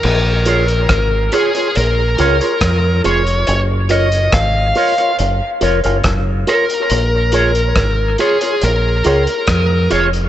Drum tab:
CC |x---------------|----------------|----------------|
HH |--xxx-xxx-xxx-xx|x-xxx-oxx-xxx-xx|x-xxx-xxx-xxx-xx|
SD |----r-------r---|----r-------r---|----r-------r---|
BD |----o-------o---|----o-------o---|----o-------o---|